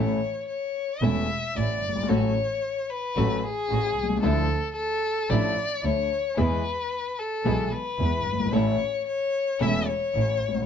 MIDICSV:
0, 0, Header, 1, 5, 480
1, 0, Start_track
1, 0, Key_signature, 3, "major"
1, 0, Tempo, 536673
1, 1877, Time_signature, 4, 2, 24, 8
1, 9533, End_track
2, 0, Start_track
2, 0, Title_t, "Violin"
2, 0, Program_c, 0, 40
2, 0, Note_on_c, 0, 73, 73
2, 432, Note_off_c, 0, 73, 0
2, 437, Note_on_c, 0, 73, 69
2, 913, Note_on_c, 0, 76, 81
2, 927, Note_off_c, 0, 73, 0
2, 1404, Note_on_c, 0, 74, 76
2, 1417, Note_off_c, 0, 76, 0
2, 1868, Note_on_c, 0, 73, 81
2, 1882, Note_off_c, 0, 74, 0
2, 2592, Note_on_c, 0, 71, 81
2, 2605, Note_off_c, 0, 73, 0
2, 3070, Note_on_c, 0, 68, 90
2, 3083, Note_off_c, 0, 71, 0
2, 3777, Note_off_c, 0, 68, 0
2, 3782, Note_on_c, 0, 69, 84
2, 4229, Note_off_c, 0, 69, 0
2, 4258, Note_on_c, 0, 69, 87
2, 4740, Note_on_c, 0, 74, 86
2, 4753, Note_off_c, 0, 69, 0
2, 5228, Note_on_c, 0, 73, 83
2, 5242, Note_off_c, 0, 74, 0
2, 5706, Note_on_c, 0, 71, 85
2, 5720, Note_off_c, 0, 73, 0
2, 6430, Note_on_c, 0, 69, 78
2, 6444, Note_off_c, 0, 71, 0
2, 6910, Note_on_c, 0, 71, 87
2, 6924, Note_off_c, 0, 69, 0
2, 7634, Note_on_c, 0, 73, 87
2, 7647, Note_off_c, 0, 71, 0
2, 8110, Note_off_c, 0, 73, 0
2, 8115, Note_on_c, 0, 73, 89
2, 8603, Note_on_c, 0, 76, 88
2, 8617, Note_off_c, 0, 73, 0
2, 8846, Note_on_c, 0, 73, 94
2, 8859, Note_off_c, 0, 76, 0
2, 9533, Note_off_c, 0, 73, 0
2, 9533, End_track
3, 0, Start_track
3, 0, Title_t, "String section"
3, 0, Program_c, 1, 48
3, 0, Note_on_c, 1, 57, 68
3, 0, Note_on_c, 1, 61, 60
3, 0, Note_on_c, 1, 64, 71
3, 157, Note_off_c, 1, 57, 0
3, 157, Note_off_c, 1, 61, 0
3, 157, Note_off_c, 1, 64, 0
3, 907, Note_on_c, 1, 57, 72
3, 910, Note_on_c, 1, 61, 65
3, 912, Note_on_c, 1, 64, 74
3, 1114, Note_off_c, 1, 57, 0
3, 1115, Note_off_c, 1, 61, 0
3, 1116, Note_off_c, 1, 64, 0
3, 1392, Note_on_c, 1, 57, 41
3, 1395, Note_on_c, 1, 61, 40
3, 1397, Note_on_c, 1, 64, 53
3, 1596, Note_off_c, 1, 57, 0
3, 1598, Note_off_c, 1, 61, 0
3, 1599, Note_off_c, 1, 64, 0
3, 1876, Note_on_c, 1, 57, 70
3, 1877, Note_on_c, 1, 61, 65
3, 1880, Note_on_c, 1, 66, 74
3, 2077, Note_off_c, 1, 57, 0
3, 2078, Note_off_c, 1, 61, 0
3, 2079, Note_off_c, 1, 66, 0
3, 2832, Note_on_c, 1, 57, 74
3, 2832, Note_on_c, 1, 61, 71
3, 2834, Note_on_c, 1, 66, 78
3, 3032, Note_off_c, 1, 57, 0
3, 3032, Note_off_c, 1, 61, 0
3, 3033, Note_off_c, 1, 66, 0
3, 3307, Note_on_c, 1, 57, 44
3, 3308, Note_on_c, 1, 61, 43
3, 3310, Note_on_c, 1, 66, 53
3, 3509, Note_off_c, 1, 57, 0
3, 3509, Note_off_c, 1, 61, 0
3, 3510, Note_off_c, 1, 66, 0
3, 3783, Note_on_c, 1, 53, 70
3, 3787, Note_on_c, 1, 62, 66
3, 3789, Note_on_c, 1, 64, 80
3, 3986, Note_off_c, 1, 53, 0
3, 3988, Note_off_c, 1, 62, 0
3, 3989, Note_off_c, 1, 64, 0
3, 4740, Note_on_c, 1, 53, 72
3, 4742, Note_on_c, 1, 62, 71
3, 4743, Note_on_c, 1, 64, 82
3, 4944, Note_off_c, 1, 53, 0
3, 4945, Note_off_c, 1, 62, 0
3, 4946, Note_off_c, 1, 64, 0
3, 5219, Note_on_c, 1, 53, 44
3, 5221, Note_on_c, 1, 62, 42
3, 5223, Note_on_c, 1, 64, 45
3, 5424, Note_off_c, 1, 53, 0
3, 5425, Note_off_c, 1, 62, 0
3, 5425, Note_off_c, 1, 64, 0
3, 5701, Note_on_c, 1, 56, 69
3, 5703, Note_on_c, 1, 59, 61
3, 5705, Note_on_c, 1, 64, 69
3, 5905, Note_off_c, 1, 56, 0
3, 5906, Note_off_c, 1, 59, 0
3, 5907, Note_off_c, 1, 64, 0
3, 6664, Note_on_c, 1, 56, 67
3, 6668, Note_on_c, 1, 59, 65
3, 6668, Note_on_c, 1, 64, 75
3, 6868, Note_off_c, 1, 56, 0
3, 6870, Note_off_c, 1, 59, 0
3, 6871, Note_off_c, 1, 64, 0
3, 7150, Note_on_c, 1, 56, 40
3, 7151, Note_on_c, 1, 59, 40
3, 7154, Note_on_c, 1, 64, 45
3, 7354, Note_off_c, 1, 56, 0
3, 7354, Note_off_c, 1, 59, 0
3, 7356, Note_off_c, 1, 64, 0
3, 7635, Note_on_c, 1, 57, 66
3, 7637, Note_on_c, 1, 61, 64
3, 7638, Note_on_c, 1, 64, 77
3, 7837, Note_off_c, 1, 57, 0
3, 7839, Note_off_c, 1, 61, 0
3, 7839, Note_off_c, 1, 64, 0
3, 8597, Note_on_c, 1, 57, 71
3, 8597, Note_on_c, 1, 61, 65
3, 8599, Note_on_c, 1, 64, 84
3, 8799, Note_off_c, 1, 57, 0
3, 8799, Note_off_c, 1, 61, 0
3, 8800, Note_off_c, 1, 64, 0
3, 9080, Note_on_c, 1, 57, 46
3, 9081, Note_on_c, 1, 61, 41
3, 9083, Note_on_c, 1, 64, 46
3, 9281, Note_off_c, 1, 57, 0
3, 9282, Note_off_c, 1, 61, 0
3, 9283, Note_off_c, 1, 64, 0
3, 9533, End_track
4, 0, Start_track
4, 0, Title_t, "Grand piano"
4, 0, Program_c, 2, 0
4, 0, Note_on_c, 2, 33, 71
4, 0, Note_on_c, 2, 45, 79
4, 0, Note_on_c, 2, 52, 66
4, 0, Note_on_c, 2, 57, 60
4, 0, Note_on_c, 2, 61, 59
4, 0, Note_on_c, 2, 69, 69
4, 155, Note_off_c, 2, 52, 0
4, 156, Note_off_c, 2, 33, 0
4, 157, Note_off_c, 2, 45, 0
4, 157, Note_off_c, 2, 57, 0
4, 158, Note_off_c, 2, 61, 0
4, 158, Note_off_c, 2, 69, 0
4, 909, Note_on_c, 2, 52, 59
4, 912, Note_on_c, 2, 40, 73
4, 913, Note_on_c, 2, 61, 57
4, 914, Note_on_c, 2, 57, 57
4, 916, Note_on_c, 2, 28, 71
4, 918, Note_on_c, 2, 69, 64
4, 1115, Note_off_c, 2, 52, 0
4, 1117, Note_off_c, 2, 40, 0
4, 1117, Note_off_c, 2, 61, 0
4, 1118, Note_off_c, 2, 28, 0
4, 1118, Note_off_c, 2, 57, 0
4, 1119, Note_off_c, 2, 69, 0
4, 1391, Note_on_c, 2, 33, 47
4, 1392, Note_on_c, 2, 45, 48
4, 1596, Note_off_c, 2, 33, 0
4, 1597, Note_off_c, 2, 45, 0
4, 1692, Note_on_c, 2, 30, 42
4, 1749, Note_on_c, 2, 31, 58
4, 1755, Note_off_c, 2, 30, 0
4, 1813, Note_off_c, 2, 31, 0
4, 1814, Note_on_c, 2, 32, 71
4, 1869, Note_on_c, 2, 54, 67
4, 1870, Note_on_c, 2, 57, 64
4, 1871, Note_on_c, 2, 33, 76
4, 1871, Note_on_c, 2, 61, 64
4, 1872, Note_on_c, 2, 45, 73
4, 1875, Note_on_c, 2, 69, 76
4, 1876, Note_off_c, 2, 32, 0
4, 2074, Note_off_c, 2, 54, 0
4, 2074, Note_off_c, 2, 57, 0
4, 2074, Note_off_c, 2, 61, 0
4, 2075, Note_off_c, 2, 33, 0
4, 2075, Note_off_c, 2, 45, 0
4, 2076, Note_off_c, 2, 69, 0
4, 2836, Note_on_c, 2, 54, 68
4, 2836, Note_on_c, 2, 57, 60
4, 2836, Note_on_c, 2, 61, 60
4, 2837, Note_on_c, 2, 45, 77
4, 2838, Note_on_c, 2, 33, 74
4, 2838, Note_on_c, 2, 69, 70
4, 3034, Note_off_c, 2, 54, 0
4, 3034, Note_off_c, 2, 57, 0
4, 3034, Note_off_c, 2, 61, 0
4, 3035, Note_off_c, 2, 33, 0
4, 3035, Note_off_c, 2, 45, 0
4, 3035, Note_off_c, 2, 69, 0
4, 3309, Note_on_c, 2, 33, 54
4, 3310, Note_on_c, 2, 45, 54
4, 3510, Note_off_c, 2, 33, 0
4, 3510, Note_off_c, 2, 45, 0
4, 3605, Note_on_c, 2, 35, 47
4, 3660, Note_on_c, 2, 36, 62
4, 3666, Note_off_c, 2, 35, 0
4, 3724, Note_off_c, 2, 36, 0
4, 3727, Note_on_c, 2, 37, 71
4, 3782, Note_on_c, 2, 53, 73
4, 3785, Note_on_c, 2, 38, 84
4, 3785, Note_on_c, 2, 50, 83
4, 3785, Note_on_c, 2, 62, 66
4, 3787, Note_off_c, 2, 37, 0
4, 3787, Note_on_c, 2, 69, 78
4, 3788, Note_on_c, 2, 64, 65
4, 3985, Note_off_c, 2, 53, 0
4, 3987, Note_off_c, 2, 38, 0
4, 3987, Note_off_c, 2, 50, 0
4, 3987, Note_off_c, 2, 62, 0
4, 3988, Note_off_c, 2, 64, 0
4, 3988, Note_off_c, 2, 69, 0
4, 4738, Note_on_c, 2, 53, 70
4, 4741, Note_on_c, 2, 33, 77
4, 4741, Note_on_c, 2, 62, 55
4, 4742, Note_on_c, 2, 45, 72
4, 4745, Note_on_c, 2, 64, 56
4, 4746, Note_on_c, 2, 69, 74
4, 4943, Note_off_c, 2, 53, 0
4, 4944, Note_off_c, 2, 33, 0
4, 4944, Note_off_c, 2, 62, 0
4, 4945, Note_off_c, 2, 45, 0
4, 4946, Note_off_c, 2, 64, 0
4, 4947, Note_off_c, 2, 69, 0
4, 5224, Note_on_c, 2, 38, 49
4, 5224, Note_on_c, 2, 50, 46
4, 5426, Note_off_c, 2, 38, 0
4, 5426, Note_off_c, 2, 50, 0
4, 5700, Note_on_c, 2, 52, 82
4, 5703, Note_on_c, 2, 56, 63
4, 5703, Note_on_c, 2, 59, 68
4, 5705, Note_on_c, 2, 40, 85
4, 5706, Note_on_c, 2, 68, 72
4, 5906, Note_off_c, 2, 52, 0
4, 5906, Note_off_c, 2, 56, 0
4, 5906, Note_off_c, 2, 59, 0
4, 5907, Note_off_c, 2, 40, 0
4, 5908, Note_off_c, 2, 68, 0
4, 6665, Note_on_c, 2, 52, 57
4, 6666, Note_on_c, 2, 35, 66
4, 6667, Note_on_c, 2, 56, 62
4, 6669, Note_on_c, 2, 47, 70
4, 6669, Note_on_c, 2, 59, 56
4, 6671, Note_on_c, 2, 68, 68
4, 6869, Note_off_c, 2, 52, 0
4, 6870, Note_off_c, 2, 35, 0
4, 6870, Note_off_c, 2, 56, 0
4, 6871, Note_off_c, 2, 47, 0
4, 6871, Note_off_c, 2, 59, 0
4, 6872, Note_off_c, 2, 68, 0
4, 7150, Note_on_c, 2, 52, 49
4, 7152, Note_on_c, 2, 40, 49
4, 7354, Note_off_c, 2, 52, 0
4, 7355, Note_off_c, 2, 40, 0
4, 7445, Note_on_c, 2, 30, 46
4, 7508, Note_on_c, 2, 31, 56
4, 7510, Note_off_c, 2, 30, 0
4, 7564, Note_on_c, 2, 32, 61
4, 7572, Note_off_c, 2, 31, 0
4, 7624, Note_on_c, 2, 52, 63
4, 7624, Note_on_c, 2, 61, 57
4, 7625, Note_on_c, 2, 33, 76
4, 7625, Note_on_c, 2, 57, 60
4, 7626, Note_on_c, 2, 45, 78
4, 7628, Note_on_c, 2, 69, 71
4, 7630, Note_off_c, 2, 32, 0
4, 7832, Note_off_c, 2, 52, 0
4, 7832, Note_off_c, 2, 57, 0
4, 7832, Note_off_c, 2, 61, 0
4, 7833, Note_off_c, 2, 33, 0
4, 7833, Note_off_c, 2, 45, 0
4, 7834, Note_off_c, 2, 69, 0
4, 8591, Note_on_c, 2, 52, 62
4, 8592, Note_on_c, 2, 40, 76
4, 8593, Note_on_c, 2, 57, 55
4, 8593, Note_on_c, 2, 61, 61
4, 8595, Note_on_c, 2, 28, 67
4, 8595, Note_on_c, 2, 69, 67
4, 8796, Note_off_c, 2, 40, 0
4, 8796, Note_off_c, 2, 52, 0
4, 8797, Note_off_c, 2, 57, 0
4, 8797, Note_off_c, 2, 61, 0
4, 8798, Note_off_c, 2, 28, 0
4, 8798, Note_off_c, 2, 69, 0
4, 9077, Note_on_c, 2, 45, 55
4, 9079, Note_on_c, 2, 33, 54
4, 9280, Note_off_c, 2, 45, 0
4, 9281, Note_off_c, 2, 33, 0
4, 9375, Note_on_c, 2, 32, 49
4, 9432, Note_on_c, 2, 33, 61
4, 9437, Note_off_c, 2, 32, 0
4, 9495, Note_off_c, 2, 33, 0
4, 9499, Note_on_c, 2, 34, 67
4, 9533, Note_off_c, 2, 34, 0
4, 9533, End_track
5, 0, Start_track
5, 0, Title_t, "Double bass"
5, 0, Program_c, 3, 43
5, 0, Note_on_c, 3, 33, 74
5, 158, Note_off_c, 3, 33, 0
5, 911, Note_on_c, 3, 28, 80
5, 1116, Note_off_c, 3, 28, 0
5, 1397, Note_on_c, 3, 33, 56
5, 1599, Note_off_c, 3, 33, 0
5, 1637, Note_on_c, 3, 31, 51
5, 1870, Note_off_c, 3, 31, 0
5, 1876, Note_on_c, 3, 33, 78
5, 2077, Note_off_c, 3, 33, 0
5, 2834, Note_on_c, 3, 33, 84
5, 3033, Note_off_c, 3, 33, 0
5, 3310, Note_on_c, 3, 33, 59
5, 3510, Note_off_c, 3, 33, 0
5, 3548, Note_on_c, 3, 36, 54
5, 3784, Note_off_c, 3, 36, 0
5, 3789, Note_on_c, 3, 38, 86
5, 3989, Note_off_c, 3, 38, 0
5, 4744, Note_on_c, 3, 33, 82
5, 4946, Note_off_c, 3, 33, 0
5, 5221, Note_on_c, 3, 38, 54
5, 5424, Note_off_c, 3, 38, 0
5, 5704, Note_on_c, 3, 40, 71
5, 5907, Note_off_c, 3, 40, 0
5, 6664, Note_on_c, 3, 35, 80
5, 6868, Note_off_c, 3, 35, 0
5, 7144, Note_on_c, 3, 40, 59
5, 7351, Note_off_c, 3, 40, 0
5, 7388, Note_on_c, 3, 31, 53
5, 7629, Note_off_c, 3, 31, 0
5, 7634, Note_on_c, 3, 33, 72
5, 7837, Note_off_c, 3, 33, 0
5, 8595, Note_on_c, 3, 28, 74
5, 8798, Note_off_c, 3, 28, 0
5, 9077, Note_on_c, 3, 33, 60
5, 9280, Note_off_c, 3, 33, 0
5, 9320, Note_on_c, 3, 33, 52
5, 9533, Note_off_c, 3, 33, 0
5, 9533, End_track
0, 0, End_of_file